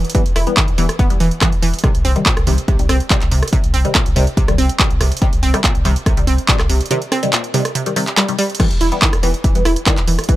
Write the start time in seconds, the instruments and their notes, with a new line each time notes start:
0.05 closed hi-hat
0.10 closed hi-hat
0.15 synth arpeggio sound E3, synth stab E3 G3 B3, kick, closed hi-hat
0.26 sub bass E1, closed hi-hat
0.36 sub bass E1, synth arpeggio sound E4, cross-stick, open hi-hat
0.47 synth stab E3 G3 B3, closed hi-hat
0.57 synth arpeggio sound D#3, kick, clap, closed hi-hat
0.68 sub bass E1, closed hi-hat
0.78 sub bass E1, synth arpeggio sound E3, synth stab E3 G3 B3, open hi-hat
0.89 cross-stick, closed hi-hat
0.99 sub bass E1, synth arpeggio sound B3, kick, closed hi-hat
1.10 sub bass E1, synth stab E3 G3 B3, closed hi-hat
1.20 sub bass E1, synth arpeggio sound E3, open hi-hat
1.31 closed hi-hat
1.41 synth arpeggio sound E3, synth stab E3 G3 B3, kick, cross-stick, clap, closed hi-hat
1.52 sub bass E1, closed hi-hat
1.62 sub bass E1, synth arpeggio sound E3, open hi-hat
1.74 closed hi-hat
1.79 closed hi-hat
1.84 synth arpeggio sound C3, synth stab C3 D#3 G3, kick, cross-stick, closed hi-hat
1.95 sub bass C2, closed hi-hat
2.05 sub bass C2, synth arpeggio sound C4, open hi-hat
2.16 synth stab C3 D#3 G3, closed hi-hat
2.26 synth arpeggio sound A#2, kick, clap, closed hi-hat
2.37 sub bass C2, cross-stick, closed hi-hat
2.47 sub bass C2, synth arpeggio sound C3, synth stab C3 D#3 G3, open hi-hat
2.58 closed hi-hat
2.68 sub bass C2, synth arpeggio sound C3, kick, closed hi-hat
2.79 sub bass C2, synth stab C3 D#3 G3, closed hi-hat
2.89 sub bass C2, synth arpeggio sound C4, cross-stick, open hi-hat
3.00 closed hi-hat
3.10 synth arpeggio sound A#2, synth stab C3 D#3 G3, kick, clap, closed hi-hat
3.21 sub bass C2, clap, closed hi-hat
3.31 sub bass C2, synth arpeggio sound C3, open hi-hat
3.43 cross-stick, closed hi-hat
3.48 closed hi-hat
3.53 synth arpeggio sound C3, synth stab C3 D#3 G3, kick, closed hi-hat
3.64 sub bass C2, closed hi-hat
3.74 sub bass C2, synth arpeggio sound C4, open hi-hat
3.85 synth stab C3 D#3 G3, closed hi-hat
3.95 synth arpeggio sound A#2, kick, cross-stick, clap, closed hi-hat
4.06 sub bass C2, closed hi-hat
4.16 sub bass C2, synth arpeggio sound C3, synth stab C3 D#3 G3, open hi-hat
4.27 closed hi-hat
4.37 sub bass C2, synth arpeggio sound C3, kick, closed hi-hat
4.48 sub bass C2, synth stab C3 D#3 G3, cross-stick, closed hi-hat
4.58 sub bass C2, synth arpeggio sound C4, open hi-hat
4.69 closed hi-hat
4.79 synth arpeggio sound A#2, synth stab C3 D#3 G3, kick, clap, closed hi-hat
4.90 sub bass C2, closed hi-hat
5.01 sub bass C2, synth arpeggio sound C3, cross-stick, open hi-hat
5.12 closed hi-hat
5.17 closed hi-hat
5.22 synth stab C3 D#3 G3, synth arpeggio sound C3, kick, closed hi-hat
5.33 sub bass C2, closed hi-hat
5.43 sub bass C2, synth arpeggio sound C4, open hi-hat
5.54 synth stab C3 D#3 G3, cross-stick, closed hi-hat
5.64 synth arpeggio sound A#2, kick, clap, closed hi-hat
5.75 sub bass C2, closed hi-hat
5.85 sub bass C2, synth stab C3 D#3 G3, synth arpeggio sound C3, open hi-hat
5.96 closed hi-hat
6.06 sub bass C2, synth arpeggio sound C3, kick, cross-stick, closed hi-hat
6.17 sub bass C2, synth stab C3 D#3 G3, closed hi-hat
6.27 sub bass C2, synth arpeggio sound C4, open hi-hat
6.38 closed hi-hat
6.48 synth arpeggio sound A#2, synth stab C3 D#3 G3, kick, clap, closed hi-hat
6.59 sub bass C2, cross-stick, clap, closed hi-hat
6.70 sub bass C2, synth arpeggio sound C3, open hi-hat
6.81 closed hi-hat
6.86 closed hi-hat
6.91 synth arpeggio sound C3, synth stab C3 D#3 G3, closed hi-hat
7.02 closed hi-hat
7.12 synth arpeggio sound C4, cross-stick, open hi-hat
7.23 synth stab C3 D#3 G3, closed hi-hat
7.33 synth arpeggio sound A#2, clap, closed hi-hat
7.44 closed hi-hat
7.54 synth stab C3 D#3 G3, synth arpeggio sound C3, open hi-hat
7.65 cross-stick, closed hi-hat
7.75 synth arpeggio sound C3, closed hi-hat
7.86 synth stab C3 D#3 G3, closed hi-hat
7.96 synth arpeggio sound C3, synth stab C3 D#3 G3, open hi-hat
8.07 clap, closed hi-hat
8.17 synth arpeggio sound G3, cross-stick, clap, closed hi-hat
8.28 synth stab C3 D#3 G3, closed hi-hat
8.39 synth arpeggio sound G3, open hi-hat
8.50 closed hi-hat
8.55 closed hi-hat
8.60 synth stab E3 G3 B3, synth arpeggio sound E3, kick, cross-stick, closed hi-hat, crash
8.71 sub bass E1, closed hi-hat
8.81 sub bass E1, synth arpeggio sound E4, open hi-hat
8.92 synth stab E3 G3 B3, closed hi-hat
9.02 synth arpeggio sound D#3, kick, clap, closed hi-hat
9.13 sub bass E1, cross-stick, closed hi-hat
9.23 sub bass E1, synth arpeggio sound E3, synth stab E3 G3 B3, open hi-hat
9.34 closed hi-hat
9.44 sub bass E1, synth arpeggio sound E3, kick, closed hi-hat
9.55 sub bass E1, synth stab E3 G3 B3, closed hi-hat
9.65 sub bass E1, synth arpeggio sound E4, cross-stick, open hi-hat
9.76 closed hi-hat
9.86 synth arpeggio sound D#3, synth stab E3 G3 B3, kick, clap, closed hi-hat
9.97 sub bass E1, clap, closed hi-hat
10.08 sub bass E1, synth arpeggio sound E3, open hi-hat
10.19 cross-stick, closed hi-hat
10.24 closed hi-hat
10.29 synth arpeggio sound E3, synth stab E3 G3 B3, kick, closed hi-hat